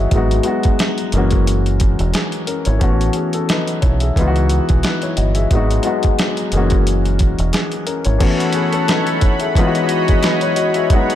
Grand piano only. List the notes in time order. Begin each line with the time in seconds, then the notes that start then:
Already playing: E3 G#3 B3 D#4 E4 F#4 G#4 B4 C#5 D#5 E5
0.13 F#3 G#3 B3 D#4
0.17 F#4
0.43 F#3 G#3 B3 D#4
0.47 F#4
1.14 E3 G#3 A#3 C#4
1.18 F#4
2.14 G#4
2.47 C#4 A#4
2.66 E4 C#5
2.79 E3 A3 B3 C#4
2.83 F#4
3.15 B3 G#4
3.34 C#4 A4
3.49 D#4 B4
3.82 E4 C#5
4.01 G#4 E5
4.17 E3 G#3 B3 D#4
4.21 F4
4.28 F#4
4.70 B3 G#4
4.84 D#4 B4
5.03 E4 C#5
5.17 F#4 D#5
5.35 G#4 E5
5.52 F#3 G#3 B3 D#4
5.57 F#4
5.83 F#3 G#3 B3 D#4
5.87 F#4
6.53 E3 G#3 A#3 C#4
6.57 F#4
7.53 G#4
7.86 C#4 A#4
8.05 E4 C#5
8.18 E3 A3 B3 C#4
8.22 F#4
8.54 B3 G#4
8.73 C#4 A4
8.88 D#4 B4
9.21 E4 C#5
9.40 G#4 E5
9.56 E3 G#3 B3 D#4
9.60 F4
9.67 F#4
10.09 B3 G#4
10.23 D#4 B4
10.42 E4 C#5
10.56 F#4 D#5
10.74 G#4 E5
10.92 F#3 G#3 B3 D#4
10.96 F#4